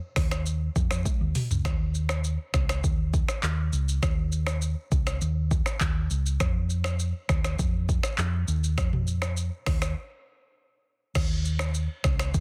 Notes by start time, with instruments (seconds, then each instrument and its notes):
0.16 fingered electric bass D#2, finger snap, kick, cross-stick, open hi-hat, shaker
0.31 finger snap, cross-stick, shaker
0.46 shaker
0.76 fingered electric bass F2, kick, shaker
0.91 fingered electric bass F2, finger snap, cross-stick, shaker
1.05 kick, high tom, shaker
1.21 fingered electric bass D#2
1.35 mid tom, open hi-hat, shaker
1.50 fingered electric bass C#2, floor tom, shaker
1.65 fingered electric bass D#2, finger snap, kick, cross-stick, shaker
1.95 shaker
2.09 finger snap, cross-stick, shaker
2.24 shaker
2.54 fingered electric bass C#2, finger snap, kick, cross-stick, shaker
2.69 finger snap, cross-stick, shaker
2.84 fingered electric bass D#2, kick, shaker
3.14 kick, shaker
3.29 finger snap, cross-stick, shaker
3.43 fingered electric bass D#2, clap, shaker
3.73 fingered electric bass C#2, shaker
3.89 shaker
4.03 fingered electric bass D#2, finger snap, kick, cross-stick, shaker
4.32 shaker
4.47 finger snap, cross-stick, shaker
4.62 shaker
4.92 fingered electric bass C#2, kick, shaker
5.07 finger snap, cross-stick, shaker
5.21 fingered electric bass D#2, shaker
5.51 kick, shaker
5.66 finger snap, cross-stick, shaker
5.81 fingered electric bass D#2, kick, clap, shaker
6.10 fingered electric bass C#2, shaker
6.26 shaker
6.40 fingered electric bass F2, finger snap, kick, cross-stick, shaker
6.70 shaker
6.84 finger snap, cross-stick, shaker
7.00 shaker
7.29 fingered electric bass D#2, finger snap, kick, cross-stick, shaker
7.44 finger snap, cross-stick, shaker
7.59 fingered electric bass F2, kick, shaker
7.89 kick, shaker
8.03 finger snap, cross-stick, shaker
8.18 fingered electric bass F2, clap, shaker
8.48 fingered electric bass D#2, shaker
8.64 shaker
8.78 fingered electric bass F2, finger snap, kick, cross-stick, shaker
8.93 mid tom
9.07 shaker
9.22 finger snap, cross-stick, shaker
9.37 shaker
9.66 fingered electric bass D#2, finger snap, kick, cross-stick, open hi-hat, shaker
9.82 finger snap, cross-stick, shaker
11.15 fingered electric bass D#2, finger snap, kick, cross-stick, crash, shaker
11.45 shaker
11.59 finger snap, cross-stick, shaker
11.75 shaker
12.04 fingered electric bass C#2, finger snap, kick, cross-stick, shaker
12.19 finger snap, cross-stick, shaker
12.34 fingered electric bass D#2, kick, shaker